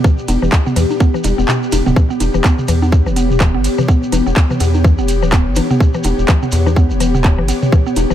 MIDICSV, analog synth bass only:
0, 0, Header, 1, 2, 480
1, 0, Start_track
1, 0, Tempo, 480000
1, 44, Time_signature, 4, 2, 24, 8
1, 8145, End_track
2, 0, Start_track
2, 0, Title_t, "Analog synth bass"
2, 0, Program_c, 0, 38
2, 284, Note_on_c, 0, 28, 102
2, 373, Note_off_c, 0, 28, 0
2, 425, Note_on_c, 0, 28, 82
2, 488, Note_off_c, 0, 28, 0
2, 764, Note_on_c, 0, 40, 83
2, 854, Note_off_c, 0, 40, 0
2, 1244, Note_on_c, 0, 28, 83
2, 1333, Note_off_c, 0, 28, 0
2, 1384, Note_on_c, 0, 28, 90
2, 1448, Note_off_c, 0, 28, 0
2, 1724, Note_on_c, 0, 28, 91
2, 1813, Note_off_c, 0, 28, 0
2, 1864, Note_on_c, 0, 26, 110
2, 1928, Note_off_c, 0, 26, 0
2, 2204, Note_on_c, 0, 28, 101
2, 2294, Note_off_c, 0, 28, 0
2, 2344, Note_on_c, 0, 28, 85
2, 2408, Note_off_c, 0, 28, 0
2, 2685, Note_on_c, 0, 40, 81
2, 3064, Note_on_c, 0, 28, 86
2, 3079, Note_off_c, 0, 40, 0
2, 3305, Note_on_c, 0, 26, 87
2, 3320, Note_off_c, 0, 28, 0
2, 3545, Note_on_c, 0, 31, 103
2, 3560, Note_off_c, 0, 26, 0
2, 3683, Note_off_c, 0, 31, 0
2, 4124, Note_on_c, 0, 28, 101
2, 4214, Note_off_c, 0, 28, 0
2, 4265, Note_on_c, 0, 28, 81
2, 4328, Note_off_c, 0, 28, 0
2, 4605, Note_on_c, 0, 40, 83
2, 4985, Note_on_c, 0, 28, 88
2, 5000, Note_off_c, 0, 40, 0
2, 5226, Note_on_c, 0, 26, 87
2, 5241, Note_off_c, 0, 28, 0
2, 5466, Note_on_c, 0, 31, 109
2, 5481, Note_off_c, 0, 26, 0
2, 5604, Note_off_c, 0, 31, 0
2, 6045, Note_on_c, 0, 28, 98
2, 6134, Note_off_c, 0, 28, 0
2, 6185, Note_on_c, 0, 28, 79
2, 6248, Note_off_c, 0, 28, 0
2, 6524, Note_on_c, 0, 40, 82
2, 6904, Note_on_c, 0, 28, 89
2, 6920, Note_off_c, 0, 40, 0
2, 7145, Note_on_c, 0, 26, 84
2, 7160, Note_off_c, 0, 28, 0
2, 7385, Note_on_c, 0, 31, 105
2, 7400, Note_off_c, 0, 26, 0
2, 7523, Note_off_c, 0, 31, 0
2, 7964, Note_on_c, 0, 28, 105
2, 8054, Note_off_c, 0, 28, 0
2, 8105, Note_on_c, 0, 28, 80
2, 8145, Note_off_c, 0, 28, 0
2, 8145, End_track
0, 0, End_of_file